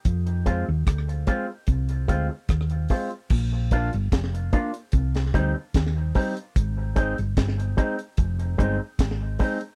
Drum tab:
CC |----------------|x---------------|----------------|
HH |xxx-xxx-xxx-xxox|--xxxxxxxxx-x-ox|x-xxxxxxxxx-x-ox|
SD |----r-------r---|----o----o--o---|----o-------o---|
BD |o-o-o-o-o-o-o-o-|o-o-o-o-o-o-o-o-|o-o-o-o-o-o-o-o-|